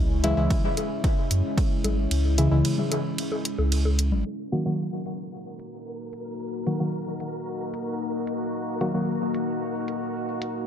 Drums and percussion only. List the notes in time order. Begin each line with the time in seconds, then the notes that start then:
0.24 closed hi-hat, low conga
0.50 kick, ride
0.64 low conga
0.77 closed hi-hat, low bongo
1.04 kick, ride
1.31 closed hi-hat
1.58 kick, ride
1.84 closed hi-hat, low bongo, low conga
2.11 ride
2.38 closed hi-hat
2.65 ride
2.78 low conga
2.92 closed hi-hat, low bongo
3.18 ride
3.32 low bongo
3.45 closed hi-hat
3.58 low bongo
3.72 ride
3.85 low bongo
3.99 closed hi-hat
4.12 low conga
4.52 closed hi-hat
5.06 closed hi-hat
5.59 closed hi-hat
6.13 closed hi-hat
6.67 closed hi-hat
7.20 closed hi-hat
7.74 closed hi-hat
8.27 closed hi-hat
8.81 closed hi-hat
9.35 closed hi-hat
9.88 closed hi-hat
10.42 closed hi-hat